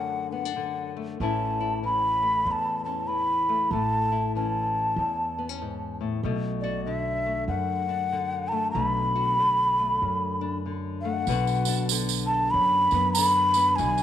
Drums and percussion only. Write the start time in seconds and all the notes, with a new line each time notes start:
11.27 tambourine
11.47 tambourine
11.65 tambourine
11.78 tambourine
11.89 tambourine
12.09 tambourine
12.91 tambourine
13.15 tambourine
13.54 tambourine
13.78 tambourine
13.98 tambourine